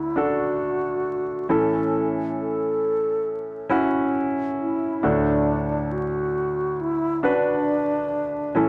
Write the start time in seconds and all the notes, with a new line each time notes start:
Already playing: D2 A2 E4
0.16 D4 F#4 A4
1.49 A2 E3 C#4 E4 A4
2.40 A4
3.70 C#4 E4 F#4
4.61 E4
5.03 D2 A2 D4 F#4 A4
5.92 F#4
6.81 E4
7.23 D4 F#4 B4
8.55 A2 E3 C#4 E4 A4